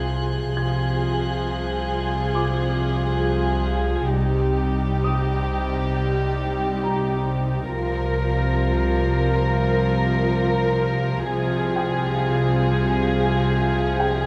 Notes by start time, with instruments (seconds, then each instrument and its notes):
Already playing: double bass section C2, cello section C3, viola section F3 F4, violin section G#4 C6 F#6
0.56 double bass section C2, cello section C3, viola section F3 F4, violin section G#4, grand piano G#6
2.35 grand piano D6
4.14 double bass section C2, cello section C3, viola section G3 D#4, violin section G4
5.04 grand piano D#6
6.83 grand piano A#5
7.73 double bass section C2, cello section C3, viola section F3 F4, violin section A#4
11.31 double bass section C2, cello section C3, viola section F3 F4, violin section G#4
11.76 grand piano G5
14.00 grand piano G5